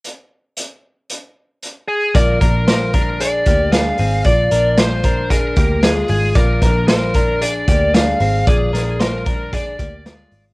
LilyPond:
<<
  \new Staff \with { instrumentName = "Lead electric guitar" } { \time 4/4 \key bes \mixolydian \tempo 4 = 114 r2. r8 aes'8 | bes'4 bes'4 d''4 f''4 | d''4 c''4 bes'4 aes'8 aes'8 | bes'4 bes'4 d''4 f''4 |
aes'4 bes'4 d''4 d''8. r16 | }
  \new Staff \with { instrumentName = "Clean electric guitar" } { \time 4/4 \key bes \mixolydian r1 | <f' d''>8 <d' bes'>8 <f' c''>8 <d' bes'>8 <d' aes'>8 <bes g'>8 <d' aes'>8 <c' aes'>8 | <f' d''>8 <d' bes'>8 <f' c''>8 <d' bes'>8 <d' aes'>8 <bes g'>8 <aes f'>4 | <f' d''>8 <d' bes'>8 <f' c''>8 <d' bes'>8 <d' aes'>8 <bes g'>8 <d' aes'>8 <c' aes'>8 |
<f' d''>8 <d' bes'>8 <f' c''>8 <d' bes'>8 <d' aes'>8 <bes g'>8 <aes f'>4 | }
  \new Staff \with { instrumentName = "Picked electric bass" } { \clef bass \time 4/4 \key bes \mixolydian r1 | bes,,8 bes,,2 d,4 aes,,8 | bes,,8 bes,,2 d,4 aes,,8 | bes,,8 bes,,2 d,4 aes,,8 |
bes,,8 bes,,2 d,4 aes,,8 | }
  \new DrumStaff \with { instrumentName = "Drums" } \drummode { \time 4/4 hh4 hh4 hh4 hh4 | <hh bd>8 <hh bd>8 <hh sn>8 <hh bd>8 hh8 <hh bd>8 <hh sn>8 hho8 | <hh bd>8 hh8 <hh sn>8 <hh bd>8 <hh bd>8 <hh bd>8 <hh sn>8 hho8 | <hh bd>8 <hh bd sn>8 <hh sn>8 <hh bd>8 hh8 <hh bd>8 <hh sn>8 hho8 |
<hh bd>8 <hh sn>8 <hh sn>8 <hh bd>8 <hh bd>8 <hh bd>8 <hh sn>8 hho8 | }
>>